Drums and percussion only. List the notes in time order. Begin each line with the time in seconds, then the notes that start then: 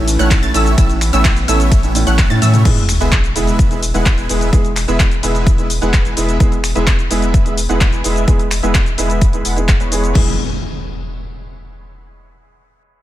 0.08 open hi-hat, shaker
0.19 closed hi-hat, shaker
0.31 kick, clap, closed hi-hat, ride, shaker
0.43 closed hi-hat, shaker
0.54 open hi-hat, shaker
0.66 closed hi-hat, shaker
0.78 kick, closed hi-hat, ride, shaker
0.90 closed hi-hat, shaker
1.01 finger snap, open hi-hat, shaker
1.13 closed hi-hat, shaker
1.25 finger snap, kick, clap, closed hi-hat, ride, shaker
1.36 closed hi-hat, shaker
1.48 open hi-hat, shaker
1.60 closed hi-hat, shaker
1.72 kick, closed hi-hat, ride, shaker
1.83 closed hi-hat, shaker
1.95 open hi-hat, shaker
2.07 closed hi-hat, shaker
2.18 kick, clap, closed hi-hat, ride, shaker
2.30 closed hi-hat, shaker
2.42 open hi-hat, high tom, shaker
2.54 closed hi-hat, mid tom, shaker
2.65 kick, closed hi-hat, crash, shaker
2.77 closed hi-hat, shaker
2.89 finger snap, open hi-hat, shaker
3.00 closed hi-hat, shaker
3.12 finger snap, kick, clap, closed hi-hat, shaker
3.24 closed hi-hat, shaker
3.36 open hi-hat, shaker
3.47 closed hi-hat, shaker
3.59 kick, closed hi-hat, shaker
3.71 closed hi-hat, shaker
3.83 open hi-hat, shaker
3.94 closed hi-hat, shaker
4.06 kick, clap, closed hi-hat, shaker
4.18 closed hi-hat, shaker
4.29 open hi-hat, shaker
4.41 closed hi-hat, shaker
4.53 kick, closed hi-hat, shaker
4.65 closed hi-hat, shaker
4.76 finger snap, clap, open hi-hat, shaker
4.88 closed hi-hat, shaker
5.00 finger snap, kick, clap, closed hi-hat, shaker
5.11 closed hi-hat, shaker
5.23 open hi-hat, shaker
5.35 closed hi-hat, shaker
5.47 kick, closed hi-hat, shaker
5.58 closed hi-hat, shaker
5.70 open hi-hat, shaker
5.82 closed hi-hat, shaker
5.93 kick, clap, closed hi-hat, shaker
6.05 closed hi-hat, shaker
6.17 open hi-hat, shaker
6.29 closed hi-hat, shaker
6.40 kick, closed hi-hat, shaker
6.52 closed hi-hat, shaker
6.64 finger snap, open hi-hat, shaker
6.75 closed hi-hat, shaker
6.87 finger snap, kick, clap, closed hi-hat, shaker
6.99 closed hi-hat, shaker
7.11 open hi-hat, shaker
7.22 closed hi-hat, shaker
7.34 kick, closed hi-hat, shaker
7.46 closed hi-hat, shaker
7.57 open hi-hat, shaker
7.69 closed hi-hat, shaker
7.81 kick, clap, closed hi-hat, shaker
7.93 closed hi-hat, shaker
8.04 open hi-hat, shaker
8.16 closed hi-hat, shaker
8.28 kick, closed hi-hat, shaker
8.39 closed hi-hat, shaker
8.51 finger snap, clap, open hi-hat, shaker
8.63 closed hi-hat, shaker
8.75 finger snap, kick, clap, closed hi-hat, shaker
8.86 closed hi-hat, shaker
8.98 open hi-hat, shaker
9.10 closed hi-hat, shaker
9.21 kick, closed hi-hat, shaker
9.33 closed hi-hat, shaker
9.45 open hi-hat, shaker
9.57 closed hi-hat, shaker
9.68 kick, clap, closed hi-hat, shaker
9.80 closed hi-hat, shaker
9.92 open hi-hat, shaker
10.04 closed hi-hat, shaker
10.15 kick, crash